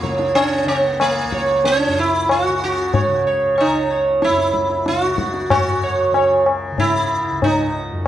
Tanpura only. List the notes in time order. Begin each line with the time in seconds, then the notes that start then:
Already playing: C#2 F#2 C#3
0.03 C#3
0.65 C#3
1.25 C#2
1.87 F#2
2.48 C#3
3.07 C#3
3.67 C#2
4.29 F#2
4.88 C#3
5.51 F#2
6.12 C#3
6.72 C#3
7.31 C#2
7.92 F#2